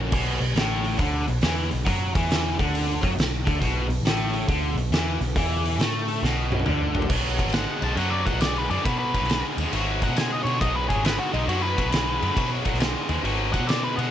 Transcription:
Already playing: distorted electric guitar F#3 A#3 C#4 F#4
0.11 picked electric bass B1, distorted electric guitar B2, kick, crash
0.40 picked electric bass B1, distorted electric guitar B2, open hi-hat
0.55 picked electric bass A1, distorted electric guitar A2, snare, open hi-hat
0.84 open hi-hat
0.99 picked electric bass D2, distorted electric guitar D3, kick, open hi-hat
1.28 picked electric bass B1, distorted electric guitar B2, open hi-hat
1.41 picked electric bass E2, distorted electric guitar E3, snare, open hi-hat
1.71 picked electric bass B1, distorted electric guitar B2, open hi-hat
1.85 picked electric bass F#2, distorted electric guitar F#3, kick, open hi-hat
2.15 picked electric bass E2, distorted electric guitar E3, kick, open hi-hat
2.30 snare, open hi-hat
2.59 picked electric bass D2, distorted electric guitar D3, kick, open hi-hat
2.75 open hi-hat
3.02 picked electric bass F#2, distorted electric guitar F#3, kick, open hi-hat
3.15 picked electric bass B1, distorted electric guitar B2, open hi-hat
3.20 snare
3.45 picked electric bass D2, distorted electric guitar D3, kick, open hi-hat
3.60 picked electric bass B1, distorted electric guitar B2, kick, open hi-hat
3.88 picked electric bass B1, distorted electric guitar B2, open hi-hat
4.02 picked electric bass A1, distorted electric guitar A2, open hi-hat
4.07 snare
4.34 open hi-hat
4.48 picked electric bass D2, distorted electric guitar D3, kick, open hi-hat
4.75 picked electric bass B1, distorted electric guitar B2, open hi-hat
4.91 picked electric bass E2, distorted electric guitar E3, snare, open hi-hat
5.20 picked electric bass B1, distorted electric guitar B2, open hi-hat
5.36 picked electric bass E2, distorted electric guitar E3, kick, open hi-hat
5.66 open hi-hat
5.79 picked electric bass A2, distorted electric guitar A3, snare, open hi-hat
6.08 open hi-hat
6.23 picked electric bass B1, distorted electric guitar B2, snare
6.52 high tom
6.59 high tom
6.66 picked electric bass D2, distorted electric guitar D3, mid tom
6.95 floor tom
7.02 floor tom
7.09 picked electric bass B1, distorted electric guitar B2 F#3, kick, crash
7.38 distorted electric guitar B2 F#3, kick, ride
7.45 picked electric bass G#1, snare
7.53 distorted electric guitar B2 G#3, lead electric guitar F#5, snare, ride
7.81 picked electric bass B1, distorted electric guitar B2 G#3, lead electric guitar A5, ride
7.97 picked electric bass F#2, distorted electric guitar B2 F#3, lead electric guitar F#5, ride
8.10 lead electric guitar D5
8.25 distorted electric guitar B2 F#3, lead electric guitar F#5, kick, ride
8.34 picked electric bass B1
8.41 distorted electric guitar B2 G#3, lead electric guitar D5, snare, ride
8.58 lead electric guitar B4
8.70 picked electric bass F#2, distorted electric guitar B2 G#3, lead electric guitar D5, ride
8.85 picked electric bass B2, distorted electric guitar B2 F#3, lead electric guitar B4, kick, ride
8.99 lead electric guitar B4
9.14 distorted electric guitar B2 F#3, kick, ride
9.22 picked electric bass B1, snare
9.29 distorted electric guitar B2 G#3, snare, ride
9.57 picked electric bass D#2, distorted electric guitar B2 G#3, ride
9.73 picked electric bass G#1, distorted electric guitar B2 F#3, ride
10.02 distorted electric guitar B2 F#3, lead electric guitar F#5, kick, ride
10.09 picked electric bass B2
10.16 distorted electric guitar B2 G#3, lead electric guitar G#5, snare, ride
10.31 lead electric guitar D#5
10.43 picked electric bass B2, distorted electric guitar B2 G#3, lead electric guitar C#5, ride
10.61 picked electric bass B1, distorted electric guitar B2 F#3, lead electric guitar D#5, kick, ride
10.75 lead electric guitar B4
10.89 distorted electric guitar B2 F#3, lead electric guitar G#4, kick, ride
10.96 picked electric bass G#1
11.04 distorted electric guitar B2 G#3, lead electric guitar B4, snare, ride
11.19 lead electric guitar F#4
11.33 picked electric bass B1, distorted electric guitar B2 G#3, lead electric guitar D#4, ride
11.46 picked electric bass F#2, distorted electric guitar B2 F#3, lead electric guitar F#4, ride
11.62 lead electric guitar B4
11.76 distorted electric guitar B2 F#3, kick, ride
11.85 picked electric bass B1
11.90 distorted electric guitar B2 G#3, snare, ride
12.20 picked electric bass F#2, distorted electric guitar B2 G#3, ride
12.35 distorted electric guitar B2 F#3, picked electric bass B2, kick, ride
12.65 distorted electric guitar B2 F#3, kick, ride
12.74 picked electric bass B1, snare
12.79 distorted electric guitar B2 G#3, snare, ride
13.08 picked electric bass D#2, distorted electric guitar B2 G#3, ride
13.24 picked electric bass G#1, distorted electric guitar B2 F#3, ride
13.53 distorted electric guitar B2 F#3, lead electric guitar F#5, kick, ride
13.60 picked electric bass B2
13.67 distorted electric guitar B2 G#3, lead electric guitar D5, snare, ride
13.84 lead electric guitar B4
13.96 distorted electric guitar B2 G#3, picked electric bass B2, lead electric guitar F#5, ride

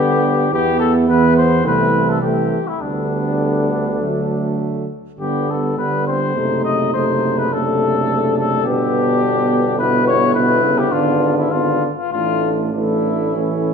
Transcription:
Already playing: tuba G1, trombone D3, flugelhorn B3, french horn B3, trumpet G4
0.52 tuba E2, trombone E3, flugelhorn B3, french horn B3, trumpet G4
0.79 trumpet A4
1.08 trombone E3, flugelhorn B3, french horn B3, trumpet B4
1.37 trumpet C5
1.64 tuba C2, trombone E3, french horn A3, flugelhorn C4, trumpet B4
2.09 trumpet A4
2.22 trombone E3, french horn A3, flugelhorn C4, trumpet G4
2.67 trumpet E4
2.80 tuba D2, trombone D3, french horn G3, flugelhorn B3, trumpet D4
3.99 trombone D3, french horn F#3, flugelhorn A3
5.19 tuba G1, trombone D3, french horn G3, flugelhorn B3, trumpet G4
5.50 trumpet A4
5.77 trombone D3, french horn G3, flugelhorn B3, trumpet B4
6.07 flugelhorn C4, trumpet C5
6.35 tuba F#1, trombone C3, french horn A3, flugelhorn D#4
6.65 trumpet D#5
6.94 trombone C3, french horn A3, flugelhorn D#4, trumpet C5
7.38 trumpet B4
7.51 trombone C3, french horn A3, flugelhorn D4, trumpet A4
8.38 trumpet A4
8.65 tuba G1, trombone B2, french horn B3, flugelhorn D4, trumpet G4
9.78 trombone B2, french horn B3, flugelhorn E4, trumpet B4
10.07 trumpet C#5
10.34 trombone B2, french horn B3, flugelhorn E4, trumpet B4
10.64 trombone C#3
10.78 trumpet G4
10.91 tuba G#1, trombone D3, french horn B3, flugelhorn D4, trumpet F4
11.37 trumpet E4
11.51 trombone D3, french horn B3, flugelhorn D4, trumpet F4
11.97 trumpet F4
12.12 tuba A1, trombone E3, french horn A3, flugelhorn D4, trumpet F4
12.74 trombone E3, french horn A3, flugelhorn D4, trumpet E4
13.35 trombone E3, french horn A3, flugelhorn C#4

